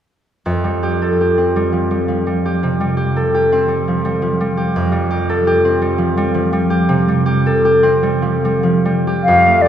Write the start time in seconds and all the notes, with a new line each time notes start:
0.46 F2
0.64 G3
0.83 G4
1.02 A4
1.21 G4
1.38 C4
1.56 G3
1.72 F3
1.91 G3
2.08 F3
2.27 G3
2.46 G4
2.63 C3
2.80 G3
2.97 G4
3.16 A4
3.35 G4
3.52 C4
3.68 G3
3.88 F3
4.05 G3
4.22 F3
4.41 G3
4.57 G4
4.76 F2
4.92 G3
5.11 G4
5.29 A4
5.47 G4
5.65 C4
5.82 G3
5.98 F3
6.17 G3
6.34 F3
6.53 G3
6.70 G4
6.89 C3
7.08 G3
7.26 G4
7.46 A4
7.65 G4
7.83 C4
8.03 G3
8.22 F3
8.45 G3
8.63 F3
8.85 G3
9.07 G4
9.24 F5
9.28 F2
9.46 A3
9.62 D5